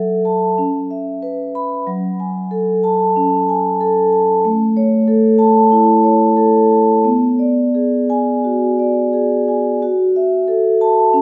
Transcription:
0.00 0.54 F#3 soft
0.00 0.45 A4 soft
0.00 0.12 E5 soft
0.25 0.58 A5 soft
0.58 1.83 C#4 soft
0.91 1.42 E5 soft
1.23 1.74 B4 soft
1.55 1.87 B5 medium
1.87 3.12 F#3 soft
2.20 2.71 G#5 soft
2.51 3.03 A4 soft
2.84 3.35 A5 medium
3.16 3.67 C#4 soft
3.49 4.00 G#5 soft
3.81 4.31 A4 soft
4.12 4.44 A5 soft
4.45 5.67 A3 medium
4.77 5.26 C#5 soft
5.08 5.58 A4 soft
5.38 5.90 A5 medium
5.72 6.24 E4 soft
6.04 6.57 C#5 soft
6.37 6.91 A4 soft
6.70 7.04 A5 soft
7.04 8.39 B3 medium
7.39 7.95 D5 soft
7.75 8.30 G#4 soft
8.10 8.65 G#5 medium
8.44 8.99 F#4 soft
8.79 9.34 D5 soft
9.13 9.69 G#4 soft
9.48 9.82 G#5 soft
9.82 11.10 F#4 soft
10.16 10.69 E5 soft
10.48 11.00 A4 soft
10.81 11.13 A5 medium
11.14 11.22 C#4 medium

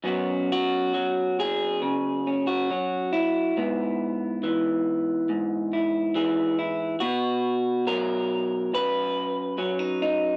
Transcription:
0.04 3.57 F#2 medium
0.04 0.93 F#3 soft
0.04 3.54 B3 soft
0.04 2.26 C#4 soft
0.04 0.50 F#4 soft
0.52 1.39 F#4 medium
0.94 2.69 F#3 medium
1.40 2.47 G#4 medium
1.82 2.69 C#3 medium
2.27 2.70 C#4 soft
2.47 3.57 F#4 medium
2.70 3.52 F#3 medium
2.70 3.12 C#4 soft
3.13 4.85 E4 medium
3.57 5.28 G#2 medium
3.57 7.08 B3 soft
4.43 6.14 E3 medium
5.29 6.95 G#2 soft
5.73 6.58 E4 soft
6.15 7.00 E3 medium
6.15 6.95 G#4 soft
6.59 6.95 E4 soft
7.00 8.72 B2 medium
7.00 7.85 F#4 medium
7.87 9.58 F#3 medium
7.87 8.72 A#4 medium
8.74 10.37 F#2 medium
8.74 10.37 B4 loud
9.58 10.37 F#3 medium
9.58 9.79 C#4 soft
9.79 10.00 D#4 soft
10.02 10.37 D#4 medium

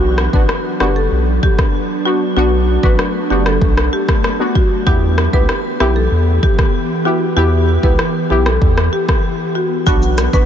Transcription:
0.00 0.28 B1 loud
0.00 4.83 F#3 medium
0.00 0.30 B3 medium
0.00 2.34 B3 medium
0.00 0.30 D4 medium
0.00 4.83 D4 medium
0.00 0.30 F#4 loud
0.18 cross-stick medium
0.33 0.47 A1 medium
0.33 0.52 B3 medium
0.33 0.52 D4 medium
0.33 0.52 F#4 medium
0.33 0.46 B4 medium
0.33 kick medium
0.49 cross-stick medium
0.80 1.08 F#1 medium
0.80 0.99 B3 medium
0.80 0.99 D4 medium
0.80 0.99 F#4 medium
0.80 0.92 G4 medium
0.80 cross-stick medium
0.96 1.08 A4 medium
1.12 1.39 B1 loud
1.43 1.55 G4 medium
1.43 kick medium
1.59 kick loud
1.59 cross-stick medium
2.05 2.24 B3 medium
2.05 2.24 D4 medium
2.05 2.17 F#4 medium
2.05 2.24 F#4 medium
2.36 2.78 B1 loud
2.36 4.84 A3 medium
2.36 2.80 B3 medium
2.36 2.80 D4 medium
2.36 2.49 F#4 loud
2.36 2.80 F#4 loud
2.83 2.97 A1 medium
2.83 3.02 B3 medium
2.83 3.02 D4 medium
2.83 3.02 F#4 medium
2.83 2.96 B4 medium
2.83 kick medium
2.99 cross-stick medium
3.30 3.58 F#1 medium
3.30 3.49 B3 medium
3.30 3.49 D4 medium
3.30 3.49 F#4 medium
3.30 3.42 G4 medium
3.46 3.58 A4 medium
3.46 cross-stick medium
3.62 3.89 B1 loud
3.62 kick loud
3.77 cross-stick medium
3.93 4.05 G4 medium
4.08 kick loud
4.08 cross-stick medium
4.24 cross-stick medium
4.39 4.58 B3 medium
4.39 4.58 D4 medium
4.39 4.59 F#4 medium
4.55 4.67 F#4 medium
4.55 kick medium
4.86 5.28 E2 loud
4.86 9.83 E3 medium
4.86 5.30 B3 medium
4.86 9.83 B3 medium
4.86 5.30 E4 medium
4.86 9.83 G4 medium
4.86 4.99 G4 loud
4.86 5.30 G4 loud
4.86 kick loud
5.18 cross-stick medium
5.33 5.47 C#2 medium
5.33 5.52 B3 medium
5.33 5.52 E4 medium
5.33 5.52 G4 medium
5.33 5.45 B4 medium
5.33 kick medium
5.49 cross-stick medium
5.80 6.08 B1 medium
5.80 5.99 B3 medium
5.80 5.99 E4 medium
5.80 5.92 G4 medium
5.80 5.99 G4 medium
5.80 cross-stick medium
5.96 6.08 A4 medium
6.12 6.39 E2 loud
6.43 6.55 G4 medium
6.43 kick medium
6.59 kick medium
6.59 cross-stick medium
7.05 7.24 B3 medium
7.05 7.24 E4 medium
7.05 7.17 F#4 medium
7.05 7.24 G4 medium
7.36 7.78 E2 loud
7.36 7.80 B3 medium
7.36 7.80 E4 medium
7.36 7.49 G4 loud
7.36 7.80 G4 loud
7.83 7.97 C#2 medium
7.83 8.02 B3 medium
7.83 8.02 E4 medium
7.83 8.02 G4 medium
7.83 7.96 B4 medium
7.83 kick medium
7.99 cross-stick medium
8.30 8.58 B1 medium
8.30 8.49 B3 medium
8.30 8.49 E4 medium
8.30 8.42 G4 medium
8.30 8.49 G4 medium
8.46 8.58 A4 medium
8.46 cross-stick medium
8.62 8.89 E2 loud
8.62 kick loud
8.78 cross-stick medium
8.93 9.05 G4 medium
9.09 kick medium
9.09 cross-stick medium
9.55 9.67 F#4 medium
9.86 10.28 B1 loud
9.86 10.46 F#3 medium
9.86 10.30 B3 medium
9.86 10.46 B3 medium
9.86 10.30 D4 medium
9.86 10.46 D4 medium
9.86 9.99 F#4 loud
9.86 10.30 F#4 loud
9.86 kick loud
9.86 shaker medium
10.02 shaker soft
10.18 cross-stick medium
10.18 closed hi-hat medium
10.18 shaker medium
10.33 10.46 A1 medium
10.33 10.46 B3 medium
10.33 10.46 D4 medium
10.33 10.46 F#4 medium
10.33 10.45 B4 medium
10.33 kick medium
10.33 shaker medium

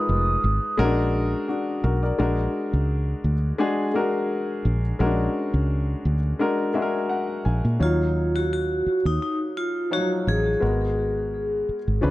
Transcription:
0.00 0.78 G#3 medium
0.00 0.80 D#4 medium
0.00 0.79 F4 medium
0.00 0.79 A#4 medium
0.00 0.82 B4 medium
0.00 0.74 D#6 loud
0.09 0.36 F1 medium
0.44 0.58 G#1 medium
0.78 1.34 A#1 loud
0.78 1.92 G#3 medium
0.78 0.85 C#4 medium
0.78 1.47 F#4 medium
0.78 1.49 A#4 loud
0.85 1.47 D4 medium
1.48 1.82 D4 medium
1.48 1.81 F#4 medium
1.84 2.11 B1 medium
1.84 2.02 F#4 medium
1.84 2.01 A#4 medium
2.03 2.18 A#4 medium
2.03 2.36 D5 medium
2.18 2.46 A#1 loud
2.18 3.33 G#3 medium
2.18 3.33 D4 medium
2.18 3.33 F#4 medium
2.18 3.33 A#4 medium
2.73 3.13 C#2 medium
3.24 3.51 D2 medium
3.58 3.87 G#3 medium
3.58 3.88 D4 medium
3.58 3.88 F#4 medium
3.58 3.88 G#4 medium
3.94 4.81 G#3 medium
3.94 4.81 D4 medium
3.94 4.81 F#4 medium
3.94 4.81 A#4 medium
4.65 4.92 A#1 medium
4.99 5.27 A#1 loud
4.99 6.14 G#3 medium
4.99 5.06 C#4 medium
4.99 6.14 F#4 medium
4.99 6.15 A#4 medium
5.06 6.17 D4 medium
5.54 5.94 C#2 medium
6.05 6.33 D2 medium
6.39 6.69 G#3 medium
6.39 6.69 D4 medium
6.39 6.69 F#4 medium
6.39 6.69 A#4 medium
6.74 7.61 G#3 medium
6.74 7.61 D4 medium
6.74 7.62 F#4 medium
6.74 6.82 G#4 medium
6.74 7.07 E5 medium
6.82 7.65 A#4 medium
7.09 7.42 F#5 medium
7.45 7.60 A#1 medium
7.45 7.78 G#5 medium
7.65 7.77 A#2 medium
7.79 8.82 D#2 medium
7.79 8.95 F#3 medium
7.79 8.95 D#4 medium
7.79 8.37 F4 medium
7.79 8.95 C#5 medium
7.79 8.95 F5 medium
8.36 8.52 F#4 medium
8.53 9.02 F#4 medium
8.86 muted fingered electric bass stroke soft
9.05 9.18 D#2 medium
9.05 9.21 D#4 medium
9.22 9.38 D#4 medium
9.57 9.89 F4 medium
9.90 9.98 F3 medium
9.90 10.49 D#4 medium
9.90 10.09 F#4 medium
9.90 10.50 C#5 medium
9.90 10.50 F5 medium
9.97 10.52 F#3 medium
10.27 10.55 A1 medium
10.27 12.11 G#4 medium
10.60 11.64 G#1 medium
10.60 11.76 G#3 medium
10.60 11.76 B3 medium
10.60 11.77 F#4 medium
10.60 11.77 A#4 medium
11.69 muted fingered electric bass stroke soft
11.88 12.00 G#1 medium
12.01 12.11 C#2 medium
12.01 12.11 F3 medium
12.01 12.11 C#4 medium
12.01 12.11 D4 medium
12.01 12.11 B4 medium

